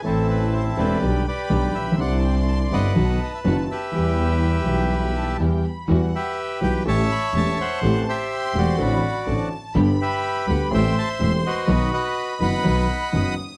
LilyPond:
<<
  \new Staff \with { instrumentName = "Violin section" } { \time 4/4 \key e \minor \tempo 4 = 124 a''2 b''2 | c'''2 a''2 | g''2 b''8 a''8 g''8 b''8 | fis''4 g''4 a''2 |
a''4 c'''4 b''4 a''4 | b''2 c'''2 | b''2. dis'''4 | }
  \new Staff \with { instrumentName = "Bandoneon" } { \time 4/4 \key e \minor << { a'8 b'8 c''8 d''4 d''4 e''8 | fis''16. a''32 g''8 a''8 fis''4 dis''16 e''16 fis''8 e''8~ | e''2. r4 | r8 e''4 g''8 a''8 b''8 a''8 fis''8~ |
fis''8 e''4 d''2 r8 | r8 e''4 fis''8 g''8 a''8 e''8 dis''8~ | dis''8 fis''4 b''2 r8 | } \\ { <c' e'>4. <g' b'>4 <g' b'>4. | d''4. <b' dis''>2 <g' b'>8~ | <g' b'>2. r4 | r8 <g' b'>4. <cis'' e''>4. c''8~ |
c''8 <g' c''>4 fis'2 r8 | r8 <g' b'>4. <c'' e''>4. <fis' b'>8~ | <fis' b'>8 <b' dis''>4 <dis'' fis''>2 r8 | } >> }
  \new Staff \with { instrumentName = "String section" } { \time 4/4 \key e \minor <c' e' a'>4. <c' e' a'>8 <b d' g'>8 r8 <b d' g'>8 r8 | <c' d' e'>4. <c' d' e'>8 <b dis' fis'>8 r8 <b dis' fis'>8 r8 | <b e' g'>4. <b e' g'>4. <b e' g'>8 r8 | <g e' fis'>8 r4 <g e' fis'>8 <a cis' g'>8 r8 <a cis' g'>8 r8 |
<a c' g'>8 r4 <a c' g'>8 <c' d' fis'>8 r8 <c' d' fis'>8 r8 | <b d' g'>8 r4 <b d' g'>8 <a c' g'>8 r8 <a c' g'>8 r8 | <b dis' fis'>8 r4 <b dis' fis'>8 <b dis' fis'>8 r8 <b dis' fis'>8 r8 | }
  \new Staff \with { instrumentName = "Grand piano" } { \clef bass \time 4/4 \key e \minor <a,, a, e a c' a'>4. <e,, e, e a c' a'>8 <b,, b, d g b g'>8 r8 <b,, b, d g b g'>8 r32 a,,32 ais,,32 b,,32 | <c, c d g c' e'>4. <g,, g, d g c' e'>8 <b,, b, dis fis b fis'>8 r8 <fis,, fis, dis fis b fis'>8 r8 | <e, e g b g'>4. <b,, b, e g b g'>4. <e, e g b g'>8 r8 | <e, e g b fis'>8 r4 <b,, b, e g b fis'>8 <a,, a, e a cis' g'>8 r8 <e,, e, e a cis' g'>8 r8 |
<a,, a, e a c' g'>8 r4 <e,, e, e a c' g'>8 <a,, a, d a c' fis'>8 r8 <a,, a, d a c' fis'>8 r8 | <g,, g, d g b g'>8 r4 <d, d g b g'>8 <a,, a, e a c' g'>8 r8 <e,, e, e a c' g'>8 r8 | <b,, b, dis fis b fis'>8 r4 <fis,, fis, dis fis b fis'>8 <b,, b, dis fis b fis'>8 r8 <fis,, fis, dis fis b fis'>8 r8 | }
  \new Staff \with { instrumentName = "Double bass" } { \clef bass \time 4/4 \key e \minor a,,4. e,,8 b,,8 r8 b,,8 ais,,8 | c,4. g,,8 b,,8 r8 fis,,8 r8 | e,4. b,,4. e,8 r8 | e,8 r4 b,,8 a,,8 r8 e,,8 r8 |
a,,8 r4 e,,8 a,,8 r8 a,,8 r8 | g,,8 r4 d,8 a,,8 r8 e,,8 r8 | b,,8 r4 fis,,8 b,,8 r8 fis,,8 r8 | }
>>